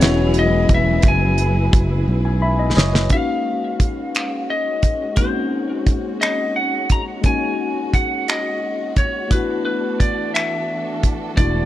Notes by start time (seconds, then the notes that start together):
Already playing: E1 F#3 G#3 E4 G#4 B4 C#5
0.00 B3 C#4 E4 F#4, snare, closed hi-hat
0.34 closed hi-hat
0.39 D#5
0.69 E1, kick, closed hi-hat
0.74 E5
1.02 F#1, kick, closed hi-hat
1.08 G#5
1.38 closed hi-hat
1.73 F#1, kick, closed hi-hat
2.08 B1
2.25 G#5
2.42 E5 B5
2.59 D#5
2.77 F#1 C#5 D#5, snare
2.93 B4, snare
3.08 G#3 A#3 C#4 F#4, kick, closed hi-hat
3.13 D#4 F#4 F5
3.80 kick, closed hi-hat
4.15 finger snap, closed hi-hat
4.50 D#5
4.83 kick, closed hi-hat
5.15 G#3 A#3 C4 C5, kick, closed hi-hat
5.20 D#4 F#4
5.25 C#4
5.86 kick, closed hi-hat
6.21 D#5, finger snap, closed hi-hat
6.56 F#5
6.89 A#5, kick, closed hi-hat
7.21 G#3 A#3 C#4, kick, closed hi-hat
7.26 D#4 F#4 G#5
7.93 F#5, kick, closed hi-hat
8.28 D#5, finger snap, closed hi-hat
8.96 C#5, kick, closed hi-hat
9.28 E3 A3 B3 D4 A4 B4, kick, closed hi-hat
9.33 E4 F#4
9.65 B4
10.00 D5, kick, closed hi-hat
10.34 E5, finger snap, closed hi-hat
11.03 kick, closed hi-hat
11.35 E1 G#3 B3 D4 D5, kick, closed hi-hat
11.39 A3 E4 F#4